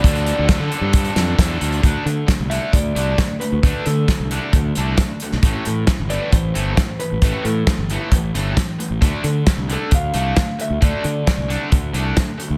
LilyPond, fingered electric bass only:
\new Staff \with { instrumentName = "Fingered electric bass" } { \clef bass \time 4/4 \key d \dorian \tempo 4 = 134 d,8. d,8 d16 r16 g,8. f,8 e,8 d,8 | d,16 r16 d8 r16 c,8 r16 d,8 c,8 r8. d,16 | d,16 r16 d8 r16 c,8 r16 d,8 c,8 r8. b,,16 | a,,16 r16 a,8 r16 g,,8 r16 a,,8 g,,8 r8. a,,16 |
a,,16 r16 a,8 r16 g,,8 r16 a,,8 g,,8 r8. a,,16 | d,16 r16 d8 r16 c,8 r16 d,8 c,8 r8. d,16 | d,16 r16 d8 r16 c,8 r16 d,8 c,8 r8. d,16 | }